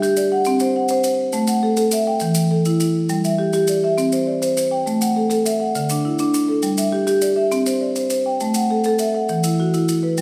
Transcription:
0.00 0.31 G4 loud
0.00 0.16 E5 medium
0.00 maracas medium
0.17 0.61 D5 medium
0.17 maracas medium
0.32 0.61 F#5 medium
0.45 0.75 C4 medium
0.45 maracas medium
0.60 0.89 C5 medium
0.60 maracas medium
0.76 1.19 F#5 medium
0.88 1.04 C5 medium
0.88 maracas medium
1.04 1.48 C5 medium
1.04 maracas medium
1.33 1.62 A3 medium
1.33 maracas medium
1.47 1.92 F#5 medium
1.47 maracas medium
1.63 1.76 A4 medium
1.77 2.07 A4 medium
1.77 maracas medium
1.91 2.36 E5 medium
1.91 maracas medium
2.07 2.36 G5 medium
2.20 2.51 E3 medium
2.20 maracas medium
2.35 maracas medium
2.51 2.95 A4 medium
2.65 2.79 E4 medium
2.65 maracas medium
2.80 3.24 E4 medium
2.80 maracas medium
3.09 3.39 G3 medium
3.09 maracas soft
3.24 3.68 E5 medium
3.24 maracas medium
3.39 3.52 G4 medium
3.53 3.83 G4 medium
3.53 maracas soft
3.67 4.13 D5 medium
3.67 maracas medium
3.84 4.13 E5 medium
3.98 4.27 C4 medium
3.98 maracas medium
4.12 4.41 C5 medium
4.12 maracas medium
4.27 4.71 D5 medium
4.42 4.56 C5 medium
4.42 maracas medium
4.57 5.01 C5 medium
4.57 maracas medium
4.71 5.01 G5 medium
4.86 5.16 A3 medium
4.86 maracas medium
5.01 5.45 F#5 medium
5.01 maracas medium
5.16 5.29 A4 medium
5.30 5.60 A4 medium
5.30 maracas medium
5.45 5.90 E5 medium
5.45 maracas medium
5.60 5.90 F#5 medium
5.75 6.05 D3 medium
5.75 maracas medium
5.89 6.19 D4 medium
5.89 maracas medium
6.05 6.49 E4 medium
6.19 6.33 D4 medium
6.19 maracas medium
6.34 6.78 D4 medium
6.34 maracas medium
6.48 6.78 A4 medium
6.62 6.93 G3 medium
6.62 maracas medium
6.78 7.22 E5 medium
6.78 maracas medium
6.92 7.06 G4 medium
7.07 7.37 G4 medium
7.07 maracas medium
7.21 7.66 D5 medium
7.21 maracas medium
7.36 7.66 E5 medium
7.52 7.81 C4 medium
7.52 maracas medium
7.66 7.95 C5 medium
7.66 maracas medium
7.81 8.26 D5 medium
7.96 8.09 C5 medium
7.96 maracas medium
8.10 8.55 C5 medium
8.10 maracas medium
8.26 8.55 G5 medium
8.40 8.70 A3 medium
8.40 maracas medium
8.54 9.00 F#5 medium
8.54 maracas medium
8.71 8.85 A4 medium
8.84 9.15 A4 medium
8.84 maracas soft
8.99 9.44 E5 medium
8.99 maracas medium
9.14 9.44 F#5 medium
9.29 9.59 E3 medium
9.29 maracas medium
9.44 9.73 E4 medium
9.44 maracas medium
9.60 10.03 F#4 medium
9.74 9.88 E4 medium
9.74 maracas soft
9.88 10.21 E4 medium
9.88 maracas medium
10.03 10.21 B4 medium
10.17 10.21 G3 medium
10.17 maracas soft

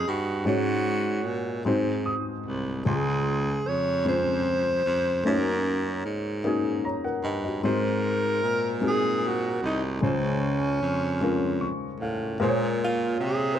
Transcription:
0.00 0.49 D#3 soft
0.00 0.50 A#3 medium
0.00 0.45 C#4 medium
0.00 0.45 D#4 medium
0.00 0.47 F#4 medium
0.00 0.10 G#4 medium
0.00 0.47 C#5 medium
0.00 0.49 D5 soft
0.00 0.45 D#5 medium
0.08 0.44 G2 medium
0.08 0.48 F#4 medium
0.45 1.62 G#2 medium
0.45 1.28 G#2 loud
0.45 1.59 G#3 medium
0.45 1.59 C#4 medium
0.45 1.60 D#4 medium
0.45 1.60 F#4 medium
0.45 1.63 F#4 medium
0.45 1.61 C#5 medium
1.27 1.63 A#2 medium
1.65 2.15 G#2 medium
1.65 2.82 G#2 medium
1.65 2.79 G#3 medium
1.65 2.80 C4 medium
1.65 2.79 D#4 medium
1.65 2.80 F#4 medium
1.65 2.80 C5 medium
2.06 2.82 D#6 medium
2.46 2.83 C2 medium
2.85 3.61 C#2 medium
2.85 4.01 C#3 soft
2.85 3.99 G#3 medium
2.85 3.99 C#4 medium
2.85 3.99 F4 medium
2.85 3.69 G#4 medium
2.85 4.00 C6 medium
3.67 4.82 F2 medium
3.67 4.06 C#5 medium
4.05 5.18 G#3 medium
4.05 5.19 C4 soft
4.05 5.19 C#4 soft
4.05 5.19 F4 soft
4.05 5.20 C5 medium
4.05 5.30 C5 loud
4.85 5.22 F2 medium
5.24 6.01 F#2 medium
5.24 5.31 A3 medium
5.24 6.38 C#4 medium
5.24 6.38 D#4 medium
5.24 6.39 F#4 medium
5.24 6.39 C#5 medium
5.28 6.41 A#3 medium
5.28 6.16 A#4 medium
6.05 6.93 G#2 medium
6.44 7.57 A#3 medium
6.44 7.58 C#4 medium
6.44 7.58 D#4 medium
6.44 6.85 F#4 medium
6.44 6.85 G#4 medium
6.85 7.04 C#5 soft
6.85 7.03 A#5 medium
7.04 7.42 A#4 medium
7.04 7.42 F#5 medium
7.23 7.60 G2 medium
7.23 7.43 D#5 medium
7.44 7.63 F#4 soft
7.44 7.82 D#5 medium
7.63 8.39 G#2 medium
7.63 8.79 G#2 soft
7.63 8.76 G#3 medium
7.63 8.77 C4 medium
7.63 8.77 D#4 medium
7.63 8.77 F#4 medium
7.63 8.80 A#4 loud
7.63 8.78 C5 medium
8.43 9.58 A#2 medium
8.81 9.95 G#3 medium
8.81 9.95 C4 medium
8.81 9.95 D#4 medium
8.81 9.96 F#4 medium
8.81 9.96 G#4 medium
8.87 9.28 G#4 medium
9.27 9.64 F#4 medium
9.62 9.99 C2 medium
9.62 9.82 D#4 medium
10.01 10.78 C#2 medium
10.01 11.17 C#3 medium
10.01 11.15 G#3 medium
10.01 11.15 C#4 medium
10.01 11.16 F4 medium
10.01 11.16 C5 medium
10.06 11.99 C#4 medium
10.82 11.70 F2 medium
11.21 12.34 G#3 medium
11.21 12.35 C#4 medium
11.21 12.35 F4 medium
11.21 12.35 A#4 medium
11.61 11.98 C#6 medium
12.00 12.37 A2 medium
12.00 12.38 F5 medium
12.40 13.16 A#2 loud
12.40 13.56 A#2 medium
12.40 13.53 G#3 medium
12.40 13.53 A#3 medium
12.40 13.54 F4 medium
12.40 13.54 G#4 medium
12.40 12.48 C5 medium
12.49 13.57 C#5 medium
12.84 13.25 F4 medium
13.20 13.59 C3 medium
13.20 13.57 G#4 medium
13.55 13.59 C5 medium

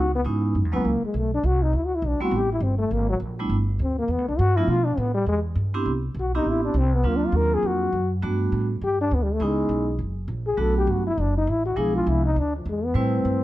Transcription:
0.00 0.24 C#2 medium
0.00 0.14 F#4 medium
0.15 0.22 B3 medium
0.25 0.54 G#2 medium
0.25 0.55 G#3 medium
0.25 0.55 B3 medium
0.25 0.55 C#4 medium
0.25 0.55 D#4 medium
0.25 0.54 E4 medium
0.55 0.65 F#2 medium
0.65 0.73 E2 medium
0.72 0.83 C#2 medium
0.72 0.83 F#3 medium
0.72 0.83 G#3 medium
0.72 0.83 A#3 medium
0.72 0.88 B3 medium
0.72 0.83 C#4 medium
0.72 0.84 E4 medium
0.85 1.01 C#2 medium
0.85 1.03 A#3 medium
1.02 1.19 G#3 medium
1.02 muted upright bass stroke soft
1.14 1.43 B1 medium
1.14 1.33 A3 medium
1.34 1.47 D4 medium
1.43 1.72 C2 medium
1.43 1.64 F#4 medium
1.62 1.78 D#4 medium
1.73 2.02 D2 medium
1.73 1.87 E4 medium
1.86 1.97 F#4 medium
1.95 2.09 E4 medium
2.02 2.19 B1 medium
2.07 2.22 D4 medium
2.20 2.31 G3 medium
2.20 2.31 A3 medium
2.20 2.31 B3 medium
2.20 2.31 C4 medium
2.20 2.32 E4 medium
2.20 2.38 F#4 medium
2.20 muted upright bass stroke soft
2.31 2.60 A1 medium
2.37 2.52 G4 medium
2.53 2.64 E4 medium
2.60 2.90 G1 medium
2.60 2.78 C4 medium
2.78 2.95 A3 medium
2.91 3.19 G#1 medium
2.91 3.09 A#3 medium
3.09 3.16 F#3 medium
3.20 3.49 A#1 medium
3.39 3.49 G3 medium
3.39 3.49 A3 medium
3.39 3.50 B3 medium
3.39 3.50 D4 medium
3.39 3.50 E4 medium
3.49 3.78 G1 medium
3.79 4.07 D2 medium
3.83 3.98 C4 medium
3.99 4.12 A#3 medium
4.08 4.18 E2 medium
4.08 4.28 B3 medium
4.18 4.28 D2 medium
4.28 4.38 B1 medium
4.28 4.40 D4 medium
4.39 4.67 G2 loud
4.39 4.58 F#4 loud
4.56 4.67 F3 medium
4.56 4.67 A3 medium
4.56 4.67 B3 medium
4.56 4.67 D4 medium
4.56 4.72 E4 medium
4.56 4.68 F4 medium
4.68 4.96 B2 loud
4.68 4.87 F4 medium
4.85 5.00 D4 medium
4.97 5.26 A2 medium
4.97 5.14 B3 medium
5.14 5.26 G3 medium
5.26 5.55 E2 medium
5.26 5.39 G#3 medium
5.56 5.85 G2 medium
5.74 5.85 B3 medium
5.74 5.85 C4 medium
5.74 5.85 D4 medium
5.74 5.85 E4 medium
5.74 5.85 G4 medium
5.85 6.14 C2 medium
6.15 6.44 B1 medium
6.20 6.34 F#4 medium
6.35 6.73 B3 medium
6.35 6.73 C4 medium
6.35 6.73 D4 medium
6.35 6.50 D#4 medium
6.35 6.73 E4 medium
6.35 6.73 G4 medium
6.44 6.73 A1 medium
6.49 6.64 E4 medium
6.64 6.79 D4 medium
6.74 7.03 C2 medium
6.78 6.96 C4 medium
6.94 7.09 B3 medium
7.03 7.32 D2 medium
7.03 7.86 F#3 medium
7.03 7.86 A#3 medium
7.03 7.86 C4 medium
7.03 7.86 D4 medium
7.03 7.86 F4 medium
7.07 7.18 A#3 medium
7.16 7.28 D4 medium
7.27 7.38 F4 medium
7.32 7.62 D#2 medium
7.36 7.56 A#4 medium
7.54 7.68 G#4 loud
7.63 7.91 F2 medium
7.67 8.12 F#4 medium
7.92 8.21 F#2 medium
8.22 8.51 G2 loud
8.22 8.66 G3 medium
8.22 8.66 A3 medium
8.22 8.66 B3 medium
8.22 8.67 D4 medium
8.22 8.66 F#4 medium
8.52 8.80 A2 medium
8.81 9.10 G2 medium
8.81 8.99 G4 medium
9.01 9.16 D4 loud
9.11 9.39 D2 medium
9.11 9.25 B3 medium
9.23 9.35 G3 medium
9.34 9.45 A3 medium
9.40 9.68 C#2 medium
9.40 9.85 G#3 medium
9.40 10.01 G#3 medium
9.40 9.85 B3 medium
9.40 9.85 C#4 medium
9.40 9.85 D#4 medium
9.40 9.84 E4 medium
9.69 9.98 B1 medium
9.99 10.27 F#1 medium
10.28 10.57 A#1 medium
10.47 10.62 G#4 medium
10.57 10.87 B1 medium
10.57 11.02 F#3 medium
10.57 11.02 A3 medium
10.57 11.02 B3 medium
10.57 11.02 D4 medium
10.57 11.02 F#4 medium
10.57 10.77 A4 loud
10.78 10.93 G4 medium
10.87 11.16 G1 medium
10.87 11.06 F#4 medium
11.07 11.22 E4 loud
11.18 11.46 F#1 medium
11.18 11.37 D4 medium
11.38 11.52 D#4 medium
11.47 11.76 A1 medium
11.47 11.65 E4 medium
11.66 11.80 F#4 medium
11.76 12.05 B1 medium
11.76 12.20 F3 medium
11.76 12.20 G#3 medium
11.76 12.21 B3 medium
11.76 12.21 D4 medium
11.76 12.21 E4 medium
11.76 11.95 G#4 medium
11.96 12.10 F4 medium
12.07 12.35 C2 medium
12.07 12.25 E4 medium
12.25 12.40 D#4 medium
12.36 12.65 D2 medium
12.36 12.55 D4 medium
12.57 12.71 F3 medium
12.66 12.94 E2 medium
12.66 12.86 G#3 medium
12.85 12.98 B3 medium
12.94 13.24 A2 medium
12.94 13.39 G3 medium
12.94 13.39 A3 medium
12.94 13.39 C4 medium
12.94 13.44 C4 medium
12.94 13.39 E4 medium
12.94 13.39 B4 medium
13.25 13.44 G2 medium

